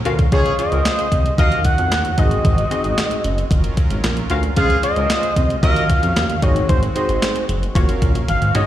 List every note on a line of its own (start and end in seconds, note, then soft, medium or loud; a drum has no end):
0.00 0.31 F#3 medium
0.00 0.31 C#4 medium
0.00 0.31 A#4 medium
0.05 0.26 D2 medium
0.05 0.18 C#4 loud
0.05 0.18 F4 loud
0.05 0.18 F#4 loud
0.05 0.18 A#4 loud
0.05 0.18 F5 loud
0.05 closed hi-hat medium
0.19 kick loud
0.19 closed hi-hat medium
0.32 0.52 C#2 loud
0.32 1.38 C#3 medium
0.32 1.38 G#3 medium
0.32 0.53 C#4 loud
0.32 0.44 C#4 medium
0.32 0.53 F4 loud
0.32 0.44 F4 medium
0.32 0.53 G#4 loud
0.32 0.45 G#4 medium
0.32 0.45 C5 medium
0.32 1.38 C5 medium
0.32 0.57 C#5 loud
0.32 0.45 F5 medium
0.32 kick loud
0.32 closed hi-hat medium
0.46 closed hi-hat medium
0.59 1.08 C#4 medium
0.59 1.08 F4 medium
0.59 1.08 G#4 medium
0.59 1.08 C5 medium
0.59 1.35 D#5 loud
0.59 1.08 F5 medium
0.59 closed hi-hat medium
0.72 0.82 C#2 loud
0.72 0.82 D#4 medium
0.72 0.82 F#4 medium
0.72 0.82 A#4 medium
0.72 closed hi-hat soft
0.85 1.06 F4 loud
0.85 1.06 G#4 loud
0.85 1.06 C5 loud
0.85 snare loud
0.85 clap medium
0.85 closed hi-hat medium
0.99 closed hi-hat medium
1.12 1.32 C2 loud
1.12 kick loud
1.12 closed hi-hat medium
1.26 closed hi-hat soft
1.38 1.58 D#2 loud
1.38 2.17 D#3 medium
1.38 2.02 C#4 medium
1.38 2.17 C#4 medium
1.38 2.02 D#4 medium
1.38 1.59 F#4 loud
1.38 3.49 F#4 medium
1.38 2.02 F#4 medium
1.38 1.59 A#4 loud
1.38 2.02 A#4 medium
1.38 1.59 D#5 loud
1.38 2.02 D#5 medium
1.38 1.63 F5 loud
1.38 kick loud
1.38 closed hi-hat medium
1.52 closed hi-hat medium
1.65 2.20 F#5 loud
1.65 kick medium
1.65 closed hi-hat medium
1.78 1.93 F2 loud
1.78 closed hi-hat medium
1.92 2.12 D#2 loud
1.92 snare medium
1.92 clap medium
1.92 closed hi-hat medium
2.05 closed hi-hat medium
2.18 2.38 G#1 loud
2.18 3.50 G#3 medium
2.18 2.60 C4 medium
2.18 3.50 C4 medium
2.18 2.61 D#4 medium
2.18 2.61 F#4 medium
2.18 2.61 G#4 medium
2.18 3.77 D#5 loud
2.18 2.61 D#5 loud
2.18 kick loud
2.18 closed hi-hat medium
2.31 closed hi-hat medium
2.45 2.65 G#1 loud
2.45 kick loud
2.45 closed hi-hat medium
2.58 closed hi-hat medium
2.71 3.20 C4 medium
2.71 3.20 D#4 medium
2.71 3.20 F#4 medium
2.71 3.20 G#4 medium
2.71 3.20 D#5 loud
2.71 closed hi-hat medium
2.84 2.94 G#1 loud
2.84 closed hi-hat soft
2.98 snare loud
2.98 clap medium
2.98 closed hi-hat medium
3.11 closed hi-hat medium
3.24 3.44 F#1 loud
3.24 closed hi-hat medium
3.38 closed hi-hat soft
3.51 3.71 F#1 medium
3.51 4.56 F#3 medium
3.51 4.56 C#4 medium
3.51 5.61 F4 medium
3.51 4.56 A#4 medium
3.51 kick loud
3.51 closed hi-hat medium
3.64 closed hi-hat medium
3.77 kick medium
3.77 closed hi-hat medium
3.90 4.01 G#1 loud
3.90 closed hi-hat medium
4.04 4.24 A#1 medium
4.04 snare loud
4.04 clap medium
4.04 closed hi-hat medium
4.17 closed hi-hat soft
4.30 4.50 D2 medium
4.30 4.43 C#4 loud
4.30 4.43 F4 loud
4.30 4.43 F#4 loud
4.30 4.43 A#4 loud
4.30 4.43 F5 loud
4.30 closed hi-hat medium
4.43 closed hi-hat medium
4.56 4.77 C#2 loud
4.56 5.62 C#3 medium
4.56 5.62 G#3 medium
4.56 4.69 C#4 medium
4.56 4.78 C#4 loud
4.56 4.78 F4 loud
4.56 4.69 F4 medium
4.56 4.78 G#4 loud
4.56 4.69 G#4 medium
4.56 4.69 C5 medium
4.56 5.62 C5 medium
4.56 4.82 F5 loud
4.56 4.69 F5 medium
4.56 kick loud
4.56 closed hi-hat medium
4.70 closed hi-hat medium
4.83 5.32 C#4 medium
4.83 5.33 F4 medium
4.83 5.33 G#4 medium
4.83 5.33 C5 medium
4.83 5.59 D#5 loud
4.83 5.33 F5 medium
4.83 closed hi-hat medium
4.96 5.07 C#2 loud
4.96 5.07 D#4 medium
4.96 5.07 F#4 medium
4.96 5.07 A#4 medium
4.96 closed hi-hat soft
5.09 5.31 F4 loud
5.09 5.31 G#4 loud
5.09 5.31 C5 loud
5.09 snare loud
5.09 clap medium
5.09 closed hi-hat medium
5.23 closed hi-hat medium
5.36 5.57 C2 medium
5.36 kick loud
5.36 closed hi-hat medium
5.50 closed hi-hat soft
5.63 5.83 D#2 loud
5.63 6.42 D#3 medium
5.63 6.42 F#3 medium
5.63 6.27 C#4 medium
5.63 6.42 C#4 medium
5.63 6.27 F4 medium
5.63 5.84 F#4 loud
5.63 6.27 F#4 medium
5.63 5.84 A#4 loud
5.63 6.27 A#4 medium
5.63 5.84 D#5 loud
5.63 6.27 D#5 medium
5.63 6.44 F5 loud
5.63 6.42 F5 medium
5.63 kick loud
5.63 closed hi-hat medium
5.76 closed hi-hat medium
5.90 kick medium
5.90 closed hi-hat medium
6.03 6.13 F2 medium
6.03 closed hi-hat medium
6.16 6.36 D#2 loud
6.16 snare medium
6.16 clap medium
6.16 closed hi-hat medium
6.30 closed hi-hat medium
6.42 6.63 G#1 medium
6.42 7.74 G#3 medium
6.42 6.85 C4 medium
6.42 7.74 C4 medium
6.42 6.85 D#4 medium
6.42 7.74 F#4 medium
6.42 6.85 F#4 medium
6.42 6.85 G#4 medium
6.42 6.68 C#5 medium
6.42 6.85 D#5 medium
6.42 kick loud
6.42 closed hi-hat medium
6.56 closed hi-hat medium
6.69 6.89 G#1 loud
6.69 6.81 C5 loud
6.69 kick loud
6.69 closed hi-hat medium
6.83 closed hi-hat medium
6.95 7.45 C4 medium
6.95 7.45 D#4 medium
6.95 7.45 F#4 medium
6.95 7.45 G#4 medium
6.95 7.45 C5 medium
6.95 7.45 D#5 medium
6.95 closed hi-hat medium
7.09 7.19 G#1 loud
7.09 closed hi-hat soft
7.22 snare loud
7.22 clap medium
7.22 closed hi-hat medium
7.36 closed hi-hat medium
7.49 7.69 F#1 loud
7.49 closed hi-hat medium
7.63 closed hi-hat soft
7.75 7.85 F#1 loud
7.75 8.28 F#3 medium
7.75 8.18 A#3 medium
7.75 8.18 C#4 medium
7.75 8.66 C#4 medium
7.75 8.18 F4 medium
7.75 8.18 F#4 medium
7.75 8.28 A#4 medium
7.75 8.18 C#5 loud
7.75 8.28 F5 medium
7.75 kick loud
7.75 closed hi-hat medium
7.88 7.99 G#1 medium
7.88 closed hi-hat medium
8.02 8.12 A#1 medium
8.02 kick medium
8.02 closed hi-hat medium
8.15 8.25 A#1 medium
8.15 closed hi-hat medium
8.28 8.39 G#1 loud
8.28 8.66 G#3 medium
8.28 8.66 F#4 medium
8.28 8.53 F5 medium
8.28 closed hi-hat medium
8.28 high tom medium
8.42 8.52 G#2 medium
8.42 closed hi-hat medium
8.55 8.66 G#3 loud
8.55 8.66 C#4 loud
8.55 8.66 D#4 loud
8.55 8.66 F#4 loud
8.55 8.66 C#5 loud
8.55 8.66 D#5 loud
8.55 closed hi-hat medium
8.55 mid tom loud